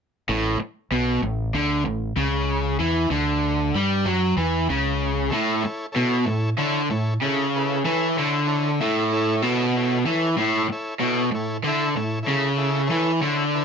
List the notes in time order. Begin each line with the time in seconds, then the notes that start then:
0.29 A1 A2
0.60 muted overdriven electric guitar stroke
0.91 B1 B2
1.23 A1 A2
1.54 D2 D3
1.86 A1 A2
2.16 C#2 C#3
2.79 E2 E3
3.10 D2 D3
3.75 G2 G3
4.05 F#2 F#3
4.37 E2 E3
4.69 C#2 C#3
5.30 A2 E4 A4 C#5
5.60 E4 A4 C#5
5.65 muted overdriven electric guitar stroke
5.92 B2 E4 A4 C#5
6.24 A2 E4 A4 C#5
6.57 D3 E4 A4 C#5
6.90 A2 E4 A4 C#5
7.22 C#3 E4 A4 C#5
7.56 E4 A4 B4
7.85 E3 E4 A4 C#5
8.16 D3 E4 A4 C#5
8.46 E4 A4 C#5
8.80 A2 E4 A4 E5
9.12 E4 A4 C#5
9.42 B2 E4 A4 C#5
9.76 E4 A4 C#5
10.05 E3 E4 A4 C#5
10.38 A2 E4 A4 C#5
10.70 E4 A4 C#5, muted overdriven electric guitar stroke
11.00 B2 E4 A4 C#5
11.32 A2 E4 C#5
11.36 A4
11.64 D3 E4 A4
11.68 E5
11.95 A2 E4 A4 C#5
12.23 E4 A4 C#5
12.28 C#3
12.57 E4 A4 E5
12.87 E3 E4 A4 C#5
13.20 D3 E4 A4 C#5
13.55 E4 A4 B4